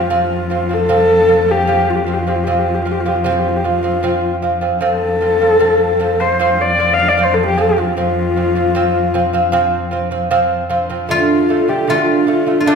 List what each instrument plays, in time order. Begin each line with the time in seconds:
Already playing: cello F2, horsehead fiddle F4
0.10 lute F3 C4
0.50 lute F3 C4
0.69 lute F3 C4
0.74 horsehead fiddle A4
0.89 lute F3 C4
1.28 lute F3 C4
1.48 lute F3 C4, horsehead fiddle G4
1.67 lute F3 C4
1.90 horsehead fiddle F4
1.96 horsehead fiddle G4
2.04 lute F3 C4, horsehead fiddle F4
2.13 horsehead fiddle G4
2.19 horsehead fiddle F4
2.27 lute F3 C4, horsehead fiddle G4
2.35 horsehead fiddle F4
2.44 lute F3 C4, horsehead fiddle G4
2.51 horsehead fiddle F4
2.59 horsehead fiddle G4
2.68 horsehead fiddle F4
2.74 horsehead fiddle G4
2.81 lute F3, horsehead fiddle F4
2.87 lute C4
2.91 horsehead fiddle G4
3.01 horsehead fiddle F4
3.06 lute F3 C4, horsehead fiddle G4
3.15 horsehead fiddle F4
3.24 lute F3 C4, horsehead fiddle G4
3.32 horsehead fiddle F4
3.39 horsehead fiddle G4
3.48 horsehead fiddle F4
3.56 horsehead fiddle G4
3.64 lute F3 C4, horsehead fiddle F4
3.83 lute F3 C4
4.03 lute F3 C4
4.42 lute F3 C4
4.61 lute F3 C4
4.81 cello F2, lute F3 C4, horsehead fiddle A4
5.21 lute F3 C4
5.40 lute F3 C4
5.59 lute F3 C4
6.00 lute F3 C4
6.20 lute F3 C4, horsehead fiddle C5
6.39 lute F3 C4
6.61 horsehead fiddle D5
6.79 lute F3 C4
6.93 horsehead fiddle F5
6.98 lute F3 C4
7.08 horsehead fiddle D5
7.17 lute F3 C4
7.23 horsehead fiddle C5
7.34 horsehead fiddle A4
7.46 horsehead fiddle G4
7.57 lute F3 C4, horsehead fiddle A4
7.69 horsehead fiddle G4
7.76 lute F3 C4, horsehead fiddle F4
7.97 lute F3 C4
8.36 lute F3 C4
8.55 lute F3 C4
8.75 lute F3 C4
9.14 lute F3 C4
9.33 lute F3 C4
9.52 lute F3 C4
9.91 lute F3 C4
10.11 lute F3 C4
10.31 lute F3 C4
10.69 lute F3 C4
10.90 lute F3 C4
11.09 lute D3 A3, horsehead fiddle F4, guzheng F4
11.49 lute D3 A3
11.68 lute D3 A3, horsehead fiddle G4
11.88 lute D3 A3, horsehead fiddle F4, guzheng F4
12.27 lute D3 A3
12.46 lute D3 A3
12.60 guzheng F4
12.65 lute D3 A3, horsehead fiddle D4, guzheng D4